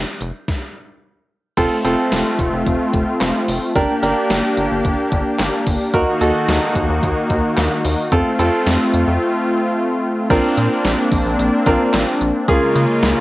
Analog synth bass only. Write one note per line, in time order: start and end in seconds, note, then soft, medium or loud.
0.21 0.32 F1 loud
1.57 1.68 F1 loud
1.85 1.95 F1 loud
2.12 2.23 F1 loud
2.39 2.50 F1 loud
2.53 2.64 F1 loud
2.67 2.77 F1 loud
2.94 3.04 F1 loud
3.21 3.32 F1 medium
3.48 3.59 F1 loud
3.76 3.86 G1 loud
4.03 4.14 G1 loud
4.30 4.41 G1 loud
4.58 4.68 G1 loud
4.71 4.82 G1 loud
4.85 4.95 G1 loud
5.12 5.23 G1 loud
5.39 5.50 G1 loud
5.67 5.77 G1 loud
5.94 6.04 D#2 loud
6.21 6.32 D#2 medium
6.48 6.59 D#2 loud
6.75 6.86 D#2 loud
6.89 7.00 D#2 loud
7.03 7.14 D#2 loud
7.30 7.41 D#2 loud
7.57 7.68 D#2 loud
7.85 7.95 D#2 loud
8.12 8.23 F2 loud
8.39 8.50 F2 loud
8.66 8.77 F2 loud
8.94 9.04 F2 medium
9.07 9.18 F2 loud
10.30 10.41 A#1 loud
10.57 10.68 A#2 loud
10.85 10.95 A#1 loud
11.12 11.22 A#1 loud
11.26 11.36 A#1 loud
11.39 11.50 A#1 loud
11.66 11.77 A#1 loud
11.94 12.04 A1 loud
12.21 12.32 A#1 medium
12.48 12.59 C#2 loud
12.76 12.86 C#3 loud
13.03 13.14 C#2 loud